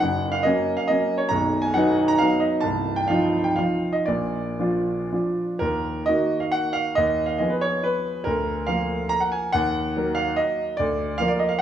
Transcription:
0.00 0.44 F#1 medium
0.00 0.44 F#2 medium
0.00 0.33 F#5 medium
0.32 0.44 F5 medium
0.43 0.85 F#3 soft
0.43 0.85 A#3 medium
0.43 0.85 C#4 medium
0.43 0.77 D#5 medium
0.77 0.88 F5 medium
0.88 1.26 F#3 soft
0.88 1.26 A#3 soft
0.88 1.27 C#4 soft
0.88 1.19 D#5 medium
1.18 1.29 C#5 medium
1.29 1.74 B0 medium
1.29 1.74 B1 medium
1.29 1.63 A#5 medium
1.62 1.74 G#5 medium
1.74 2.16 F#3 medium
1.74 2.17 B3 medium
1.74 2.17 D#4 medium
1.74 2.09 F#5 medium
2.08 2.20 A#5 medium
2.18 2.60 F#3 soft
2.18 2.60 B3 soft
2.18 2.60 D#4 soft
2.18 2.41 F5 medium
2.40 2.62 D#5 medium
2.61 3.07 C1 soft
2.61 3.08 C2 medium
2.61 2.96 A5 medium
2.96 3.09 G5 medium
3.08 3.54 F3 soft
3.08 3.54 D#4 soft
3.08 3.54 F4 medium
3.08 3.45 F5 medium
3.44 3.57 G5 medium
3.56 4.03 F3 soft
3.56 4.03 D#4 soft
3.56 4.03 F4 soft
3.56 3.93 F5 medium
3.93 4.06 D#5 medium
4.06 4.58 A#1 medium
4.06 4.58 A#2 soft
4.06 5.37 D5 medium
4.59 5.08 F3 soft
4.59 5.09 D4 soft
4.59 5.09 F4 soft
5.12 5.57 F3 soft
5.12 5.57 D4 soft
5.12 5.58 F4 soft
5.59 6.06 D#2 medium
5.59 6.06 A#4 medium
6.06 6.93 D#3 soft
6.06 6.93 A#3 soft
6.06 6.93 F#4 soft
6.06 6.42 D#5 medium
6.40 6.53 F5 medium
6.52 6.74 F#5 medium
6.73 6.95 F5 medium
6.95 7.39 D#2 medium
6.95 7.28 D#5 medium
7.26 7.39 F5 medium
7.38 8.22 F3 soft
7.38 8.22 B3 soft
7.38 8.22 G#4 soft
7.38 7.51 D#5 medium
7.50 7.62 B4 medium
7.61 7.84 C#5 medium
7.83 8.25 B4 medium
8.24 8.67 D2 medium
8.24 8.67 A#4 medium
8.67 9.48 F3 soft
8.67 9.48 A#3 soft
8.67 9.48 A#4 soft
8.67 9.10 F5 medium
9.09 9.20 A#5 medium
9.20 9.31 F#5 medium
9.32 9.52 G#5 medium
9.52 9.94 D#2 medium
9.52 10.16 F#5 medium
9.96 10.75 F#3 soft
9.96 10.75 A#3 soft
9.96 10.76 A#4 soft
10.15 10.36 F5 medium
10.36 10.78 D#5 medium
10.77 11.19 D2 medium
10.77 11.19 D5 medium
11.18 11.62 F3 soft
11.18 11.62 A#3 soft
11.18 11.62 A#4 soft
11.18 11.29 F5 medium
11.28 11.40 D5 medium
11.39 11.50 D#5 medium
11.49 11.60 F5 medium
11.59 11.62 F#5 medium

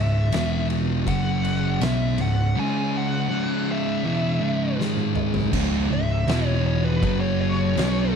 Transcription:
0.00 0.29 C#1 medium
0.00 0.25 C#2 medium
0.00 0.25 G#2 medium
0.00 0.31 C#3 medium
0.00 0.31 D#3 medium
0.00 0.32 G#3 medium
0.00 0.65 E5 loud
0.32 1.03 E1 loud
0.32 1.06 E2 medium
0.32 1.06 B2 loud
0.32 1.06 E3 loud
0.32 1.07 E3 medium
0.32 1.07 B3 medium
0.32 1.07 F#4 medium
0.32 snare loud
0.32 ride medium
0.70 ride medium
1.07 1.77 F#1 medium
1.07 1.80 F#2 medium
1.07 1.80 C#3 medium
1.07 1.80 F#3 loud
1.07 1.81 F#3 medium
1.07 1.81 C#4 medium
1.07 1.82 G#4 medium
1.07 1.82 F#5 medium
1.07 kick loud
1.07 ride loud
1.45 ride medium
1.80 2.16 B1 medium
1.80 2.17 B2 medium
1.80 4.77 C#3 medium
1.80 2.17 F#3 loud
1.80 5.50 G#3 medium
1.80 2.17 B3 loud
1.80 5.50 C#4 medium
1.80 2.20 E5 medium
1.80 snare loud
1.80 ride loud
2.18 2.53 C#1 medium
2.18 2.48 C#2 medium
2.18 2.48 G#2 medium
2.18 2.58 F#5 medium
2.18 ride medium
2.56 3.29 C#3 loud
2.56 3.29 G#3 medium
2.56 3.30 C#4 medium
2.56 2.96 G#5 loud
2.97 3.71 F#5 loud
3.31 4.04 C#2 medium
3.31 4.04 G#2 medium
3.31 4.04 C#3 loud
3.72 4.77 E5 medium
4.05 4.41 E2 medium
4.05 4.41 B2 medium
4.05 4.41 E3 loud
4.42 4.78 C#2 medium
4.42 4.78 G#2 medium
4.42 4.78 C#3 medium
4.79 5.52 G#2 medium
4.79 5.53 D#3 loud
4.79 5.53 G#3 loud
4.79 5.53 G#4 medium
4.79 snare medium
4.97 high tom medium
5.15 mid tom medium
5.34 floor tom medium
5.53 5.88 C#1 medium
5.53 5.90 C#2 medium
5.53 5.90 G#2 medium
5.53 6.27 C#3 medium
5.53 5.90 C#3 loud
5.53 6.28 D#3 medium
5.53 6.28 G#3 medium
5.53 kick loud
5.53 crash loud
5.53 crash medium
5.91 6.25 C#1 medium
5.91 6.21 C#2 medium
5.91 6.21 G#2 medium
5.91 6.48 E5 loud
6.27 6.98 E1 loud
6.27 7.02 E2 medium
6.27 7.02 B2 medium
6.27 7.01 E3 medium
6.27 7.02 E3 loud
6.27 7.01 B3 medium
6.27 7.01 F#4 medium
6.27 snare loud
6.27 crash medium
6.48 6.64 C#5 loud
6.66 6.84 C#5 medium
6.84 7.20 B4 medium
7.03 7.73 F#1 loud
7.03 7.76 F#2 medium
7.03 7.76 C#3 loud
7.03 7.76 F#3 loud
7.03 7.77 F#3 medium
7.03 8.16 C#4 medium
7.03 8.16 G#4 medium
7.03 kick loud
7.03 crash medium
7.20 7.39 C#5 medium
7.41 8.12 C#5 loud
7.77 8.12 B1 loud
7.77 8.13 B2 loud
7.77 8.13 F#3 loud
7.77 8.14 B3 loud
7.77 8.16 D#5 medium
7.77 snare loud
7.77 crash medium

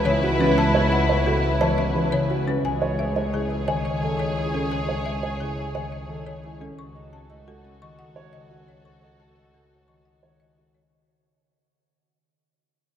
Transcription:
0.00 2.53 C#2 medium
0.00 0.39 E3 medium
0.00 0.56 A3 loud
0.00 0.22 B3 medium
0.00 0.73 C#4 medium
0.00 2.43 E4 medium
0.00 0.11 B4 loud
0.00 2.43 B4 loud
0.05 1.25 C#3 loud
0.05 0.28 C#5 loud
0.23 0.90 B3 medium
0.23 0.45 F#4 medium
0.40 1.60 E3 medium
0.40 0.63 C#4 loud
0.40 0.63 B4 medium
0.57 1.08 A3 medium
0.57 0.80 A5 loud
0.74 1.77 C#4 medium
0.74 0.97 C#5 medium
0.92 1.42 B3 medium
0.92 1.14 F#5 medium
1.09 2.98 A3 medium
1.09 1.32 C#5 medium
1.26 2.11 C#3 medium
1.26 1.49 F#4 medium
1.26 1.49 A4 medium
1.43 2.29 B3 medium
1.61 1.94 E3 loud
1.61 1.83 C#5 medium
1.61 1.83 A5 medium
1.78 2.80 C#4 medium
1.78 2.00 E5 medium
1.95 2.46 E3 medium
1.95 2.18 B4 loud
2.12 2.66 C#3 medium
2.12 2.35 C#5 medium
2.30 2.66 B3 medium
2.30 2.52 F#4 medium
2.47 2.66 E3 medium
2.47 2.69 C#4 medium
2.47 2.70 B4 medium
2.64 6.67 C#2 medium
2.64 3.15 G#3 medium
2.64 6.57 G#4 medium
2.64 6.57 C#5 medium
2.64 2.87 G#5 medium
2.82 3.84 C#4 medium
2.82 3.04 C#5 medium
2.99 3.49 A3 medium
2.99 3.21 E5 medium
3.16 4.70 G#3 medium
3.16 3.38 C#5 medium
3.33 4.18 C#3 medium
3.33 3.56 E4 medium
3.33 3.56 G#4 medium
3.50 4.36 A3 medium
3.67 4.02 D#3 medium
3.67 3.90 C#5 medium
3.67 3.90 G#5 medium
3.85 4.87 C#4 medium
3.85 4.07 D#5 medium
4.03 5.74 D#3 medium
4.03 4.25 A4 medium
4.19 5.39 C#3 medium
4.19 4.42 C#5 medium
4.37 5.05 A3 medium
4.37 4.59 E4 medium
4.54 4.76 C#4 medium
4.54 4.76 A4 medium
4.71 5.22 G#3 medium
4.71 4.94 G#5 medium
4.88 5.91 C#4 medium
4.88 5.11 C#5 medium
5.06 5.56 A3 medium
5.06 5.28 E5 medium
5.23 6.79 G#3 medium
5.23 5.45 C#5 medium
5.40 6.25 C#3 medium
5.40 5.63 E4 medium
5.40 5.63 G#4 medium
5.57 6.42 A3 medium
5.75 6.08 D#3 medium
5.75 5.97 C#5 medium
5.75 5.97 G#5 medium
5.92 7.12 C#4 medium
5.92 6.14 D#5 medium
6.09 6.79 D#3 medium
6.09 6.32 A4 medium
6.26 6.79 C#3 medium
6.26 6.49 C#5 medium
6.43 7.28 A3 medium
6.43 6.66 E4 medium
6.61 6.83 C#4 medium
6.61 6.83 A4 medium
6.78 10.81 C#2 medium
6.78 10.71 F#4 medium
6.78 10.71 A4 medium
6.78 7.01 C#6 medium
6.95 7.98 D#4 medium
6.95 7.18 D#5 medium
7.13 7.63 C#4 medium
7.13 7.35 A5 medium
7.30 9.35 A3 medium
7.30 7.52 D#5 medium
7.47 8.33 C#3 medium
7.47 7.70 F#4 medium
7.47 7.70 A4 medium
7.64 8.50 C#4 medium
7.82 8.15 D#3 medium
7.82 8.04 D#5 medium
7.82 8.04 C#6 medium
7.99 9.01 D#4 medium
7.99 8.21 F#5 medium
8.16 9.87 D#3 medium
8.16 8.38 C#5 loud
8.33 9.53 C#3 medium
8.33 8.55 D#5 medium
8.50 9.19 C#4 medium
8.50 8.73 F#4 medium
8.68 8.90 C#5 medium
8.85 9.07 C#6 medium
9.02 10.04 D#4 medium
9.02 9.25 D#5 medium
9.20 9.70 C#4 medium
9.20 9.42 A5 medium
9.37 10.93 A3 medium
9.37 9.59 D#5 medium
9.54 10.39 C#3 medium
9.54 9.76 F#4 medium
9.54 9.76 A4 medium
9.71 10.56 C#4 medium
9.88 10.22 D#3 medium
9.88 10.11 D#5 medium
9.88 10.11 C#6 medium
10.05 10.93 D#4 medium
10.05 10.28 F#5 medium
10.23 10.93 D#3 medium
10.23 10.45 C#5 medium
10.40 10.93 C#3 medium
10.40 10.62 D#5 medium
10.57 10.93 C#4 medium
10.57 10.80 F#4 medium
10.74 10.97 C#5 medium

